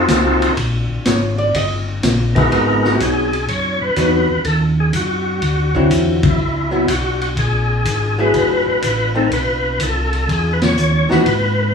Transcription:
Already playing: tonewheel organ C4 D#4 F4 F#4 A4
0.08 tonewheel organ C2, kick, snare, hi-hat pedal, ride
0.40 tonewheel organ C2, ride
0.57 tonewheel organ A#1, kick, ride
0.90 tonewheel organ A#1
1.05 tonewheel organ G#1, hollow-body jazz guitar C#5, kick, snare, hi-hat pedal, ride
1.38 hollow-body jazz guitar D5
1.54 tonewheel organ G1, hollow-body jazz guitar D#5, kick, ride
2.03 tonewheel organ A#1, kick, snare, hi-hat pedal, ride
2.35 tonewheel organ G#3 B3 D#4 E4 F#4 A#4, kick, ride
2.52 tonewheel organ G#1 F#4, kick, ride
2.84 tonewheel organ F#4, snare
2.99 tonewheel organ B1 G#4, hollow-body jazz guitar F#3 B3 D#4, kick, hi-hat pedal, ride
3.33 ride
3.48 tonewheel organ F#2 C#5, kick, ride
3.80 tonewheel organ F#2 B4
3.96 tonewheel organ E2, hollow-body jazz guitar F#3 B3 D#4, kick, hi-hat pedal, ride
4.30 tonewheel organ E2
4.44 tonewheel organ D#2 A4, kick, ride
4.80 tonewheel organ G#4
4.93 tonewheel organ F#2 F#4, kick, hi-hat pedal, ride
5.42 tonewheel organ D2, kick, ride
5.75 hollow-body jazz guitar D3 F#3 C4 E4, kick
5.90 tonewheel organ E2, kick, hi-hat pedal, ride
6.23 tonewheel organ E4, kick, ride
6.38 tonewheel organ C#2
6.71 hollow-body jazz guitar F#3 B3 E4
6.88 tonewheel organ B1 F#4, kick, hi-hat pedal, ride
7.21 tonewheel organ F#4, ride
7.37 tonewheel organ A#1 G#4, kick, ride
7.85 tonewheel organ G#1, kick, hi-hat pedal, ride
8.18 hollow-body jazz guitar F#3 A3 E4 G#4, tonewheel organ B4
8.34 tonewheel organ F#1, kick, ride
8.66 tonewheel organ F#1
8.82 tonewheel organ A1, kick, hi-hat pedal, ride
9.15 hollow-body jazz guitar A3 C4 D#4, tonewheel organ A4
9.27 tonewheel organ A#4
9.32 tonewheel organ B1 B4, kick, ride
9.79 tonewheel organ C2 A4, kick, hi-hat pedal, ride
10.13 ride
10.28 tonewheel organ E2 G#4, kick, ride
10.53 tonewheel organ B4
10.62 tonewheel organ C#5, snare, ride
10.76 tonewheel organ D#2, hi-hat pedal
11.09 tonewheel organ D#2 B4, hollow-body jazz guitar E3 G#3 D#4 F#4, snare
11.26 tonewheel organ G#2, kick, ride
11.63 tonewheel organ B4

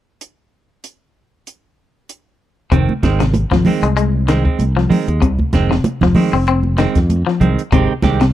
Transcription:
0.21 closed hi-hat
0.84 closed hi-hat
1.47 closed hi-hat
2.09 closed hi-hat
2.71 fingered electric bass F1, clean electric guitar C3 D#3 C4, muted clean electric guitar stroke, kick, closed hi-hat
2.89 high conga
3.03 fingered electric bass G#1, clean electric guitar D#3 G#3 C4, kick, snare, closed hi-hat, high conga
3.20 clean electric guitar C3, snare, closed hi-hat
3.34 closed hi-hat, high conga
3.51 fingered electric bass G#1, clean electric guitar F3, kick, snare, high conga
3.65 clean electric guitar D#3 G#3 C4, open hi-hat, high conga, low conga
3.83 fingered electric bass C2, clean electric guitar G#3, closed hi-hat
3.97 clean electric guitar G#3, closed hi-hat
4.28 clean electric guitar D#3 G#3 C4, snare, closed hi-hat
4.45 clean electric guitar G#3 C4, kick
4.59 fingered electric bass C2, closed hi-hat, high conga
4.77 clean electric guitar F3, snare
4.89 clean electric guitar D#3 G#3 C4, open hi-hat, high conga, low conga
5.08 fingered electric bass D#2, clean electric guitar G#3, closed hi-hat
5.22 fingered electric bass C2, clean electric guitar C3, kick, closed hi-hat
5.39 kick, high conga
5.53 fingered electric bass F1, clean electric guitar D#3 G#3 C4, kick, snare, closed hi-hat, high conga
5.71 clean electric guitar C3, snare
5.84 muted fingered electric bass stroke, closed hi-hat, high conga
6.01 fingered electric bass F1, clean electric guitar F3, kick, snare, high conga, low conga
6.15 clean electric guitar D#3 G#3 C4, open hi-hat, high conga, low conga
6.33 fingered electric bass F1, clean electric guitar C4
6.47 clean electric guitar C4, closed hi-hat
6.63 high conga
6.77 clean electric guitar D#3 G#3 C4, snare, closed hi-hat
6.95 fingered electric bass F2, kick, snare, closed hi-hat
7.10 closed hi-hat, high conga
7.27 clean electric guitar F3, snare
7.40 fingered electric bass C2, clean electric guitar D#3 G#3 C4, closed hi-hat, low conga
7.59 closed hi-hat
7.72 fingered electric bass G#1, clean electric guitar C3 D#3 G#3 C4 G4, kick, closed hi-hat
8.02 fingered electric bass C2, clean electric guitar D#3 G#3 C4 G4, kick, snare, closed hi-hat, high conga
8.21 clean electric guitar C3, snare, closed hi-hat

